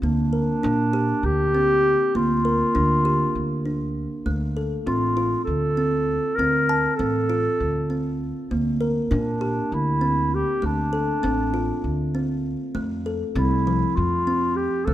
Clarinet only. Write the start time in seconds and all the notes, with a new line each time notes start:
0.03 D4
1.25 G4
2.16 F4
4.87 F4
5.44 A4
6.35 A#4
6.96 A4
9.13 D4
9.74 E4
10.34 G4
10.66 D4
13.35 E4
13.96 F4
14.56 G4
14.85 A4